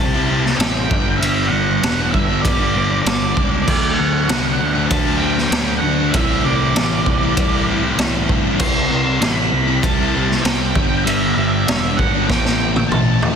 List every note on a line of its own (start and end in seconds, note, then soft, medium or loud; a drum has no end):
0.00 0.53 C2 loud
0.00 0.14 C3 medium
0.00 0.17 G3 medium
0.00 0.16 C4 medium
0.00 0.14 E4 medium
0.00 0.57 A5 loud
0.15 0.29 G3 medium
0.15 0.31 C4 medium
0.15 0.31 E4 medium
0.29 0.58 C3 medium
0.29 0.47 G3 medium
0.29 0.45 C4 medium
0.29 0.44 E4 medium
0.45 0.59 G3 medium
0.45 0.60 C4 medium
0.45 0.61 E4 medium
0.45 muted overdriven electric guitar stroke medium
0.45 snare soft
0.57 0.87 A1 loud
0.57 0.88 C3 loud
0.57 0.89 G3 medium
0.57 0.89 C4 loud
0.57 1.22 G5 loud
0.57 snare loud
0.57 ride bell medium
0.62 0.90 E4 loud
0.90 1.18 G1 loud
0.90 1.18 G2 medium
0.90 1.19 D3 loud
0.90 1.07 G3 loud
0.90 1.05 B3 loud
0.90 1.05 D4 medium
0.90 kick loud
1.05 1.21 G3 medium
1.05 1.21 B3 medium
1.05 1.23 D4 medium
1.17 1.49 G1 loud
1.17 1.81 G2 medium
1.17 1.49 D3 loud
1.17 1.51 E5 loud
1.22 1.50 G3 loud
1.22 1.51 B3 loud
1.22 1.53 D4 medium
1.22 ride bell medium
1.46 1.82 D3 medium
1.46 2.13 F#5 medium
1.51 1.79 G1 medium
1.51 1.82 G3 medium
1.51 1.83 B3 medium
1.51 1.85 D4 medium
1.69 muted overdriven electric guitar stroke soft
1.82 2.10 E1 medium
1.82 2.28 G2 medium
1.82 2.13 D3 medium
1.82 2.00 G3 loud
1.82 1.98 B3 loud
1.82 1.98 D4 loud
1.82 snare loud
1.82 ride bell medium
1.98 2.13 G3 medium
1.98 2.13 B3 medium
1.98 2.14 D4 medium
2.10 2.41 G1 loud
2.10 2.60 D3 medium
2.10 2.41 E5 medium
2.10 muted distorted electric guitar stroke soft
2.10 kick medium
2.15 2.31 G3 medium
2.15 2.29 B3 medium
2.15 2.28 D4 medium
2.29 2.61 G3 medium
2.29 2.60 B3 medium
2.29 2.58 D4 medium
2.42 2.99 G1 loud
2.42 3.01 D5 loud
2.42 kick loud
2.42 ride bell medium
2.60 2.75 G3 medium
2.60 2.76 B3 medium
2.60 2.77 D4 medium
2.75 3.04 D3 medium
2.75 2.91 G3 medium
2.75 2.89 B3 medium
2.75 2.87 D4 medium
2.89 3.06 G3 medium
2.89 3.06 B3 medium
2.89 3.07 D4 medium
2.89 muted overdriven electric guitar stroke medium
3.02 3.33 G1 medium
3.02 3.65 G2 medium
3.02 3.35 D3 loud
3.02 3.47 D5 medium
3.06 3.36 G3 loud
3.06 3.38 B3 loud
3.06 3.39 D4 loud
3.06 snare loud
3.06 ride bell medium
3.36 3.64 C#2 medium
3.36 3.65 D3 medium
3.36 3.54 G3 medium
3.36 3.52 B3 medium
3.36 3.50 D4 medium
3.36 kick medium
3.52 3.67 G3 medium
3.52 3.66 B3 medium
3.52 3.65 D4 medium
3.62 3.96 D5 medium
3.66 3.95 D2 medium
3.66 3.96 D3 medium
3.66 3.97 F#3 medium
3.66 3.99 A3 loud
3.66 4.00 D4 loud
3.66 kick loud
3.66 crash loud
3.93 4.87 F#5 medium
3.98 4.26 D2 loud
3.98 4.28 D3 medium
3.98 4.29 F#3 medium
3.98 4.31 A3 medium
3.98 4.31 D4 medium
4.14 muted overdriven electric guitar stroke medium
4.29 4.57 C2 medium
4.29 4.59 D3 medium
4.29 4.47 F#3 loud
4.29 4.46 A3 loud
4.29 4.43 D4 loud
4.29 snare loud
4.29 ride bell medium
4.45 4.60 F#3 medium
4.45 4.60 A3 medium
4.45 4.59 D4 medium
4.59 4.87 D2 medium
4.59 5.05 D3 medium
4.59 4.77 F#3 medium
4.59 4.75 A3 medium
4.59 4.74 D4 medium
4.59 muted distorted electric guitar stroke soft
4.75 5.08 F#3 medium
4.75 5.06 A3 medium
4.75 5.05 D4 medium
4.88 5.46 D2 loud
4.88 6.12 D3 medium
4.88 5.17 A5 loud
4.88 kick loud
4.88 ride bell medium
4.92 6.12 A3 medium
4.92 6.13 D4 loud
5.06 5.21 F#3 medium
5.06 5.22 A3 medium
5.06 5.24 D4 medium
5.18 5.51 D3 medium
5.18 5.78 G5 medium
5.22 5.39 F#3 medium
5.22 5.38 A3 medium
5.22 5.36 D4 medium
5.37 5.52 F#3 medium
5.37 5.54 A3 medium
5.37 5.55 D4 medium
5.37 muted overdriven electric guitar stroke medium
5.37 snare soft
5.51 5.79 D2 medium
5.51 5.82 D3 loud
5.51 5.84 F#3 loud
5.51 5.86 A3 loud
5.51 snare loud
5.51 ride bell medium
5.56 5.86 D4 loud
5.78 6.12 F#5 medium
5.82 6.10 D2 loud
5.82 6.12 D3 medium
5.82 6.02 F#3 medium
5.87 6.00 A3 medium
5.87 5.99 D4 medium
6.00 6.14 F#3 medium
6.00 6.13 A3 medium
6.00 6.13 D4 medium
6.11 6.41 C2 loud
6.11 7.34 A2 loud
6.11 6.44 C3 medium
6.11 6.45 E3 loud
6.11 6.44 E5 medium
6.11 kick loud
6.11 ride bell medium
6.16 6.45 A3 loud
6.16 6.48 E4 loud
6.44 6.72 C2 medium
6.44 6.75 C3 medium
6.44 6.76 E3 medium
6.44 6.76 A3 medium
6.44 6.78 E4 medium
6.44 7.63 D5 medium
6.60 muted overdriven electric guitar stroke medium
6.75 7.03 A1 medium
6.75 7.06 C3 loud
6.75 6.94 E3 loud
6.75 6.92 A3 loud
6.75 6.90 E4 loud
6.75 snare loud
6.75 ride bell medium
6.91 7.07 E3 medium
6.91 7.07 A3 medium
6.91 7.07 E4 medium
7.06 7.33 C2 medium
7.06 7.52 C3 medium
7.06 7.24 E3 medium
7.06 7.22 A3 medium
7.06 7.21 E4 medium
7.06 muted distorted electric guitar stroke soft
7.06 kick medium
7.22 7.56 E3 medium
7.22 7.54 A3 medium
7.22 7.53 E4 medium
7.36 7.92 C2 loud
7.36 8.57 A2 medium
7.36 8.60 E3 medium
7.36 8.59 A3 loud
7.36 kick loud
7.36 ride bell medium
7.53 7.69 E3 medium
7.53 7.68 A3 medium
7.53 7.70 E4 medium
7.67 7.97 C3 medium
7.67 7.85 E3 medium
7.67 7.83 A3 medium
7.67 7.82 E4 medium
7.82 7.99 E3 medium
7.82 7.99 A3 medium
7.82 8.01 E4 medium
7.82 muted overdriven electric guitar stroke medium
7.98 8.25 C2 loud
7.98 8.27 C3 medium
7.98 8.29 E3 loud
7.98 8.29 A3 loud
7.98 8.31 E4 loud
7.98 snare loud
7.98 ride bell medium
8.28 8.56 G2 medium
8.28 8.56 C3 medium
8.28 8.47 E3 medium
8.28 8.44 A3 medium
8.28 8.43 E4 medium
8.28 kick medium
8.44 8.58 E3 medium
8.44 8.58 A3 medium
8.44 8.61 E4 medium
8.58 8.87 C2 loud
8.58 8.88 C3 medium
8.58 8.90 G3 loud
8.58 8.91 C4 medium
8.58 8.92 E4 loud
8.58 8.89 C6 loud
8.58 kick loud
8.58 crash loud
8.89 9.18 C2 medium
8.89 9.19 C3 medium
8.89 9.20 G3 medium
8.89 9.21 C4 medium
8.89 9.23 E4 medium
8.89 9.21 C6 loud
9.07 muted overdriven electric guitar stroke medium
9.20 9.49 A1 medium
9.20 9.51 C3 loud
9.20 9.38 G3 loud
9.20 9.36 C4 loud
9.20 9.35 E4 loud
9.20 9.32 C6 loud
9.20 snare loud
9.20 ride bell medium
9.32 9.52 E4 medium
9.32 9.84 B5 loud
9.38 9.50 G3 medium
9.38 9.51 C4 medium
9.52 9.80 C2 loud
9.52 9.98 C3 medium
9.52 9.70 G3 medium
9.52 9.68 C4 medium
9.52 muted distorted electric guitar stroke medium
9.56 9.67 E4 medium
9.67 9.99 G3 medium
9.67 9.98 C4 medium
9.67 9.96 E4 medium
9.82 10.38 C2 loud
9.82 10.73 C3 medium
9.82 10.74 G3 loud
9.82 10.74 C4 medium
9.82 10.42 A5 loud
9.82 kick loud
9.82 ride bell medium
9.97 10.14 G3 medium
9.97 10.14 C4 medium
9.97 10.16 E4 medium
10.13 10.42 C3 medium
10.13 10.31 G3 medium
10.13 10.29 C4 medium
10.13 10.27 E4 medium
10.28 10.43 G3 medium
10.28 10.44 C4 medium
10.28 10.46 E4 medium
10.28 muted overdriven electric guitar stroke medium
10.28 snare soft
10.42 10.72 C2 medium
10.42 10.72 C3 medium
10.42 10.73 G3 medium
10.42 10.74 C4 loud
10.42 11.07 G5 loud
10.42 snare loud
10.42 ride bell medium
10.47 10.74 E4 loud
10.74 11.03 G1 medium
10.74 11.04 G2 medium
10.74 11.05 D3 medium
10.74 10.91 G3 loud
10.74 10.90 B3 medium
10.74 10.88 D4 loud
10.74 kick loud
10.89 11.05 G3 medium
10.89 11.06 B3 medium
10.89 11.07 D4 medium
11.04 11.33 G1 loud
11.04 11.65 G2 medium
11.04 11.35 D3 medium
11.04 11.37 G3 medium
11.04 11.37 B3 loud
11.04 11.34 E5 medium
11.04 ride bell medium
11.08 11.39 D4 loud
11.35 11.64 G1 medium
11.35 11.66 D3 medium
11.35 11.67 G3 medium
11.35 11.68 B3 medium
11.35 11.93 E5 medium
11.40 11.69 D4 medium
11.54 muted overdriven electric guitar stroke soft
11.67 11.96 E1 medium
11.67 12.13 G2 loud
11.67 11.98 D3 medium
11.67 11.84 G3 loud
11.67 11.83 B3 medium
11.67 11.81 D4 loud
11.67 snare loud
11.67 ride bell medium
11.82 11.98 G3 medium
11.82 11.98 B3 medium
11.82 11.98 D4 medium
11.97 12.26 G#1 loud
11.97 12.28 G2 medium
11.97 12.28 D3 medium
11.97 12.27 G3 medium
11.97 12.17 G3 medium
11.97 12.27 F#5 medium
11.97 muted distorted electric guitar stroke soft
11.97 kick medium
12.01 12.15 B3 medium
12.01 12.14 D4 medium
12.14 12.29 G3 medium
12.14 12.29 B3 medium
12.14 12.27 D4 medium
12.27 12.84 A1 loud
12.27 12.75 A2 medium
12.27 12.59 E3 medium
12.27 12.48 A3 loud
12.27 12.89 G5 medium
12.27 kick loud
12.27 snare medium
12.31 12.46 C4 loud
12.31 12.44 E4 loud
12.45 12.62 C4 medium
12.45 12.63 E4 medium
12.45 snare medium
12.49 12.60 A3 medium
12.61 12.91 E3 medium
12.61 12.79 A3 medium
12.61 12.77 C4 medium
12.61 12.76 E4 medium
12.76 12.92 A3 medium
12.76 12.92 C4 medium
12.76 12.93 E4 medium
12.76 muted overdriven electric guitar stroke medium
12.76 high tom medium
12.89 13.18 A1 medium
12.89 13.36 A2 medium
12.89 13.21 E3 medium
12.89 13.22 A3 loud
12.89 13.33 A5 medium
12.89 mid tom loud
12.94 13.24 C4 loud
12.94 13.25 E4 loud
13.21 13.36 E2 medium
13.21 13.36 E3 medium
13.21 13.36 A3 medium
13.21 13.36 C4 medium
13.21 floor tom loud
13.26 13.36 E4 medium